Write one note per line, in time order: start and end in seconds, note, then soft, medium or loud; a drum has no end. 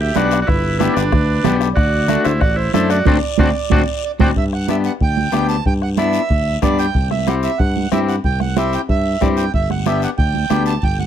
0.00 0.10 D2 medium
0.00 0.16 G4 medium
0.00 0.16 E5 medium
0.15 0.42 B1 medium
0.15 0.39 B3 medium
0.15 0.39 D4 medium
0.15 0.40 F#4 loud
0.15 0.39 G4 medium
0.15 0.39 D5 medium
0.15 bombo rim medium
0.15 high conga medium
0.15 short guiro medium
0.31 bombo rim medium
0.31 short guiro medium
0.41 0.49 F#4 medium
0.41 0.48 D5 medium
0.47 0.87 G1 medium
0.47 0.78 E4 medium
0.47 0.77 B4 medium
0.47 bombo low medium
0.47 bombo rim medium
0.47 high conga soft
0.47 long guiro medium
0.78 1.03 B3 medium
0.78 1.03 D4 medium
0.78 0.95 E4 medium
0.78 1.03 G4 medium
0.78 0.93 B4 medium
0.78 bombo rim medium
0.78 high conga medium
0.78 short guiro medium
0.94 1.10 G1 loud
0.94 1.56 D4 loud
0.94 1.57 B4 medium
0.94 bombo rim medium
0.94 short guiro medium
1.12 1.39 D2 medium
1.12 bombo low medium
1.12 bombo rim medium
1.12 high conga soft
1.12 low conga medium
1.12 long guiro medium
1.44 1.72 B1 medium
1.44 1.68 B3 medium
1.44 1.68 D4 medium
1.44 1.68 G4 medium
1.44 bombo rim medium
1.44 high conga loud
1.44 low conga loud
1.44 short guiro medium
1.61 bombo rim medium
1.61 short guiro medium
1.74 2.16 D2 loud
1.74 2.27 F#4 loud
1.74 2.21 D5 medium
1.74 bombo low medium
1.74 bombo rim medium
1.74 high conga soft
1.74 long guiro medium
2.08 2.32 A3 medium
2.08 2.32 D4 medium
2.08 2.32 F#4 medium
2.08 bombo rim medium
2.08 high conga medium
2.08 short guiro medium
2.24 2.39 D2 loud
2.24 2.40 E4 medium
2.24 2.40 C5 medium
2.24 bombo rim medium
2.24 short guiro medium
2.40 2.68 A1 medium
2.40 2.56 F#4 medium
2.40 2.56 D5 medium
2.40 bombo low medium
2.40 bombo rim medium
2.40 high conga soft
2.40 long guiro medium
2.56 2.72 E4 medium
2.56 2.72 C5 medium
2.74 3.01 F#2 medium
2.74 2.97 A3 medium
2.74 2.97 D4 medium
2.74 2.89 E4 medium
2.74 2.97 A4 medium
2.74 2.89 C5 medium
2.74 bombo rim medium
2.74 high conga medium
2.74 short guiro medium
2.90 3.05 F#4 medium
2.90 4.03 D5 medium
2.90 bombo rim medium
2.90 short guiro medium
3.05 3.19 D2 loud
3.05 3.17 C4 medium
3.05 3.18 C4 loud
3.05 3.17 D4 medium
3.05 3.17 D4 loud
3.05 3.17 F#4 medium
3.05 3.17 F#4 loud
3.05 bombo low loud
3.05 high conga loud
3.05 long guiro loud
3.38 3.51 D2 loud
3.38 3.50 C4 medium
3.38 3.49 D4 loud
3.38 3.50 D4 medium
3.38 3.50 F#4 medium
3.38 3.50 F#4 loud
3.38 bombo low loud
3.38 high conga loud
3.70 3.84 D2 loud
3.70 3.82 C4 medium
3.70 3.82 C4 loud
3.70 3.82 D4 medium
3.70 3.82 D4 loud
3.70 3.82 F#4 loud
3.70 3.82 F#4 medium
3.70 bombo low loud
3.70 high conga loud
3.70 long guiro loud
4.04 4.12 D5 medium
4.19 4.32 D2 medium
4.19 4.31 C4 loud
4.19 4.30 D4 medium
4.19 4.31 D4 loud
4.19 4.30 F#4 medium
4.19 4.31 F#4 medium
4.19 4.28 G5 loud
4.19 bombo low loud
4.19 high conga loud
4.19 long guiro loud
4.36 4.88 G2 medium
4.36 4.45 E5 medium
4.36 bombo low medium
4.36 high conga soft
4.36 long guiro medium
4.53 4.68 F#5 medium
4.53 bombo rim medium
4.68 4.91 B3 medium
4.68 4.92 D4 medium
4.68 4.92 G4 medium
4.68 4.76 E5 medium
4.68 bombo rim medium
4.68 high conga medium
4.68 short guiro medium
4.84 4.93 F#5 medium
4.84 short guiro medium
5.00 5.27 D2 medium
5.00 5.47 G5 medium
5.00 bombo low medium
5.00 high conga soft
5.00 long guiro medium
5.17 high conga medium
5.32 5.60 D2 medium
5.32 5.55 B3 medium
5.32 5.56 D4 medium
5.32 5.56 G4 medium
5.32 bombo rim medium
5.32 high conga medium
5.32 short guiro medium
5.49 5.64 A5 loud
5.49 short guiro medium
5.65 6.18 G2 medium
5.65 5.74 G5 medium
5.65 bombo low medium
5.65 high conga soft
5.65 long guiro medium
5.82 5.90 F#5 medium
5.82 bombo rim medium
5.97 6.21 B3 medium
5.97 6.21 D4 medium
5.97 6.21 E4 medium
5.97 6.59 E5 medium
5.97 bombo rim medium
5.97 high conga medium
5.97 short guiro medium
6.13 short guiro medium
6.29 6.56 D2 medium
6.29 bombo low medium
6.29 high conga soft
6.29 long guiro medium
6.62 6.89 G2 medium
6.62 6.85 B3 medium
6.62 6.85 D4 medium
6.62 6.85 G4 medium
6.62 6.78 D5 medium
6.62 bombo low medium
6.62 bombo rim medium
6.62 high conga medium
6.62 short guiro medium
6.79 7.09 G5 loud
6.79 short guiro medium
6.94 7.47 C2 medium
6.94 bombo low medium
6.94 high conga soft
6.94 long guiro medium
7.11 7.28 E5 medium
7.11 bombo rim medium
7.11 high conga medium
7.27 7.50 C4 medium
7.27 7.50 E4 medium
7.27 7.50 G4 medium
7.27 7.35 F#5 medium
7.27 bombo rim medium
7.27 high conga medium
7.27 short guiro medium
7.43 7.59 E5 medium
7.43 short guiro medium
7.58 7.86 G2 medium
7.58 7.89 F#5 medium
7.58 bombo low medium
7.58 high conga soft
7.58 long guiro medium
7.77 high conga medium
7.92 8.18 G2 medium
7.92 8.14 C4 medium
7.92 8.15 E4 medium
7.92 8.15 G4 medium
7.92 8.00 E5 medium
7.92 bombo rim medium
7.92 high conga medium
7.92 short guiro medium
8.08 8.15 F#5 medium
8.08 short guiro medium
8.24 8.76 C2 medium
8.24 8.40 G5 medium
8.24 bombo low medium
8.24 high conga soft
8.24 long guiro medium
8.40 8.57 F#5 medium
8.40 bombo rim medium
8.40 high conga medium
8.57 8.80 C4 medium
8.57 8.80 E4 medium
8.57 8.80 G4 medium
8.57 8.74 E5 medium
8.57 bombo rim medium
8.57 high conga loud
8.57 short guiro medium
8.73 8.81 G5 medium
8.73 short guiro medium
8.89 9.15 G2 medium
8.89 9.23 E5 medium
8.89 bombo low medium
8.89 high conga soft
8.89 long guiro medium
9.21 9.48 G2 medium
9.21 9.44 C4 medium
9.21 9.44 E4 medium
9.21 9.44 G4 medium
9.21 9.29 D5 medium
9.21 bombo low medium
9.21 bombo rim medium
9.21 high conga medium
9.21 short guiro medium
9.37 9.52 G5 medium
9.37 short guiro medium
9.54 10.06 G1 medium
9.54 9.69 E5 medium
9.54 bombo low medium
9.54 high conga soft
9.54 long guiro medium
9.70 9.85 F#5 medium
9.70 bombo rim medium
9.70 high conga medium
9.86 10.09 B3 medium
9.86 10.09 D4 medium
9.86 10.09 G4 medium
9.86 10.02 E5 medium
9.86 bombo rim medium
9.86 high conga medium
9.86 short guiro medium
10.02 10.11 F#5 medium
10.02 short guiro medium
10.18 10.44 D2 medium
10.18 10.63 G5 medium
10.18 bombo low medium
10.18 high conga soft
10.18 long guiro medium
10.34 high conga medium
10.50 10.76 D2 medium
10.50 10.73 B3 medium
10.50 10.73 D4 medium
10.50 10.73 G4 medium
10.50 bombo rim medium
10.50 high conga medium
10.50 short guiro medium
10.66 10.83 A5 medium
10.66 short guiro medium
10.82 11.06 G1 medium
10.82 10.98 G5 medium
10.82 bombo low medium
10.82 high conga soft
10.82 long guiro medium
11.00 11.06 F#5 medium
11.00 high conga medium